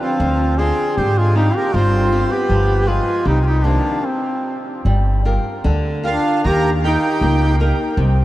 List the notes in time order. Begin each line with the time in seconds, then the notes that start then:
Already playing: D3 F4 G4 B4
0.00 F3 C4
0.20 D2 D3
0.58 C4 D4 F4 G#4
0.97 G#2 D3 C4 G4
1.17 G#3 F4
1.35 G3 C4 D4 D#4 F4
1.56 A#3 G4
1.74 G1 G3 C4 F4
2.12 C4 F4 G4
2.30 B3 G4
2.49 G1 F3
2.87 G#3 F4 G4 B4
3.25 C2 C3 G3 D#4
3.40 G#3 F4
3.45 G3 D#4
3.64 D#3 F3 A#3 C4 D4
4.06 C4
4.85 G1 G3
5.25 F4 G4 A#4
5.64 D2 D3
6.04 D4 F4 G4 A#4
6.44 D#2 D#3 G4 A#4
6.84 D#4 G4 A#4
7.21 C#2 A#3
7.60 D#4 G4 A#4
7.97 C2 C3